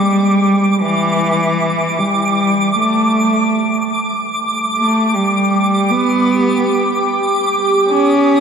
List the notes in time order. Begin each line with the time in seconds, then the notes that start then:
Already playing: G3 D6
0.81 E3
1.99 G3
2.77 A3
4.35 G4
4.77 A3
5.14 G3
5.91 B3
7.47 D#6
7.88 C#4